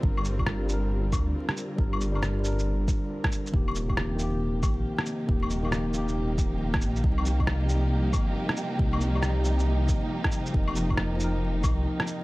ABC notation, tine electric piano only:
X:1
M:4/4
L:1/16
Q:"Swing 16ths" 1/4=137
K:Gm
V:1 name="Tine electric piano"
[G,DB]3 [G,DB]3 [G,DB]8- [G,DB]2 | [G,DB]3 [G,DB]3 [G,DB]8- [G,DB]2 | [E,B,G]3 [E,B,G]3 [E,B,G]8- [E,B,G]2 | [E,B,G]3 [E,B,G]3 [E,B,G]8- [E,B,G]2 |
[C,G,E]3 [C,G,E]3 [C,G,E]8- [C,G,E]2 | [C,G,E]3 [C,G,E]3 [C,G,E]8- [C,G,E]2 | [F,EB]3 [F,EB]3 [F,EB]8- [F,EB]2 |]